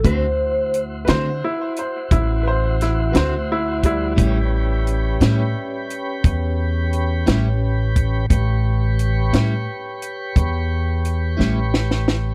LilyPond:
<<
  \new Staff \with { instrumentName = "Clean electric guitar" } { \time 12/8 \key a \mixolydian \tempo 4. = 58 c''4 r1 r4 | r1. | r1. | }
  \new Staff \with { instrumentName = "Upright piano" } { \time 12/8 \key a \mixolydian r4. <b' c''>8 e'8 c''8 e'8 <b' c''>8 e'8 <b' c''>8 e'8 <g e'>8~ | <g e'>2~ <g e'>8 r2. r8 | r1. | }
  \new Staff \with { instrumentName = "Tonewheel organ" } { \time 12/8 \key a \mixolydian <e' fis' c''>1. | <cis' g' b'>1. | <g' b' cis''>1. | }
  \new Staff \with { instrumentName = "Clean electric guitar" } { \time 12/8 \key a \mixolydian <d a c' fis'>8 r4 <d a c' fis'>8 r2 r8 <d a c' fis'>8 r4 | <a, g cis' e'>8 r4 <a, g cis' e'>8 r2 r8 <a, g cis' e'>8 r4 | r4. <a, g cis' e'>8 r2 r8 <a, g cis' e'>8 r4 | }
  \new Staff \with { instrumentName = "Upright bass" } { \clef bass \time 12/8 \key a \mixolydian d,4. d8 r4 a,,4. d,4. | a,,4. a,8 r4 e,4. a,,4. | a,,4. a,8 r4 e,4. a,,4. | }
  \new DrumStaff \with { instrumentName = "Drums" } \drummode { \time 12/8 <hh bd>4 hh8 <hh sn>4 hh8 <hh bd>4 <hh sn>8 <hh sn>4 <hh bd>8 | <hh bd>4 hh8 <hh sn>4 hh8 <hh bd>4 hh8 <hh sn>4 <hh bd>8 | <hh bd>4 hh8 <hh sn>4 hh8 <hh bd>4 hh8 sn8 sn16 sn16 sn8 | }
>>